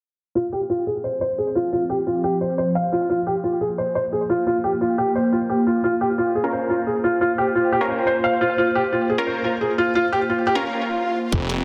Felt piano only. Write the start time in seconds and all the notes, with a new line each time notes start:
0.35 F4
0.52 G4
0.70 F4
0.87 G#4
1.04 C5
1.21 C5
1.38 G#4
1.55 F4
1.73 F4
1.90 G4
2.07 F4
2.24 G4
2.41 C5
2.58 C5
2.75 F5
2.92 F4
3.10 F4
3.27 G4
3.44 F4
3.61 G#4
3.78 C5
3.95 C5
4.12 G#4
4.30 F4
4.47 F4
4.64 G4
4.81 F4
4.98 G4
5.15 C5
5.32 F4
5.50 G4
5.67 F4
5.84 F4
6.01 G4
6.18 F4
6.35 G#4
6.52 C5
6.70 F4
6.87 G#4
7.04 F4
7.21 F4
7.38 G4
7.55 F4
7.72 G4
7.90 C5
8.07 C5
8.24 F5
8.41 F4
8.58 F4
8.75 G4
8.92 F4
9.10 G#4
9.27 C5
9.44 F4
9.61 G#4
9.78 F4
9.95 F4
10.12 G4
10.30 F4
10.47 G4